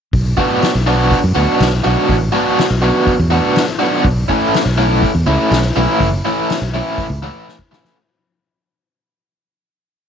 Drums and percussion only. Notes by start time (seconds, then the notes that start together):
0.13 kick, open hi-hat
0.38 kick
0.62 snare, open hi-hat
1.11 kick, open hi-hat
1.60 snare, open hi-hat
2.09 kick, open hi-hat
2.58 snare, open hi-hat
3.07 kick, open hi-hat
3.56 snare, open hi-hat
4.05 kick, open hi-hat
4.29 kick
4.54 snare, open hi-hat
5.02 kick, open hi-hat
5.51 snare, open hi-hat
6.00 kick, open hi-hat
6.50 snare, open hi-hat
6.98 kick, open hi-hat
7.48 snare
7.59 kick
7.73 snare
7.85 snare